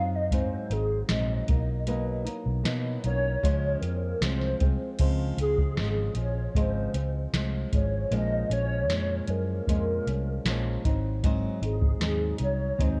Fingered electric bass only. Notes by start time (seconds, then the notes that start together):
Already playing: F#2
0.70 G#1
1.09 A#1
1.48 B1
2.46 B1
2.65 B2
3.04 B1
3.43 C#2
3.82 F2
4.21 C2
4.60 C2
5.00 C#2
5.38 C#2
5.77 G#1
6.15 A#1
6.55 G#1
6.94 C#2
7.33 C2
7.73 G#1
8.11 A#1
8.50 A#1
8.88 F2
9.28 F#2
9.67 F2
10.07 C2
10.45 A#1
10.85 G#1
11.62 G#1
12.01 D#2
12.40 C2
12.79 D#2